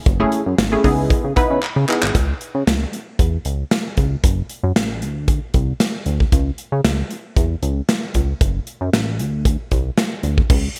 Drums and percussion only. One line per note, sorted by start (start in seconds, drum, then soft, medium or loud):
0.06 kick loud
0.06 closed hi-hat medium
0.32 closed hi-hat medium
0.58 snare loud
0.58 closed hi-hat loud
0.84 kick medium
0.84 open hi-hat medium
1.10 kick loud
1.10 closed hi-hat medium
1.36 kick loud
1.36 closed hi-hat medium
1.63 clap medium
1.89 clap medium
2.03 clap medium
2.15 kick loud
2.15 closed hi-hat medium
2.41 closed hi-hat medium
2.67 snare loud
2.67 closed hi-hat medium
2.93 closed hi-hat medium
3.19 kick medium
3.19 closed hi-hat medium
3.45 closed hi-hat medium
3.71 snare loud
3.71 closed hi-hat medium
3.97 kick medium
3.97 closed hi-hat medium
4.24 kick loud
4.24 closed hi-hat medium
4.50 closed hi-hat medium
4.76 snare loud
4.76 closed hi-hat medium
5.02 closed hi-hat medium
5.28 kick medium
5.28 closed hi-hat medium
5.54 kick medium
5.54 closed hi-hat medium
5.80 snare medium
5.80 closed hi-hat medium
6.06 closed hi-hat medium
6.20 kick medium
6.32 kick loud
6.32 closed hi-hat medium
6.58 closed hi-hat medium
6.85 snare loud
6.85 closed hi-hat loud
7.11 closed hi-hat medium
7.36 kick loud
7.36 closed hi-hat medium
7.63 closed hi-hat medium
7.89 snare loud
7.89 closed hi-hat medium
8.14 kick medium
8.14 closed hi-hat medium
8.41 kick loud
8.41 closed hi-hat medium
8.67 closed hi-hat medium
8.93 snare loud
8.93 closed hi-hat medium
9.19 closed hi-hat medium
9.45 kick loud
9.45 closed hi-hat medium
9.71 kick medium
9.71 closed hi-hat medium
9.97 snare loud
9.97 closed hi-hat medium
10.23 closed hi-hat medium
10.38 kick medium
10.50 kick loud
10.50 crash loud
10.76 closed hi-hat medium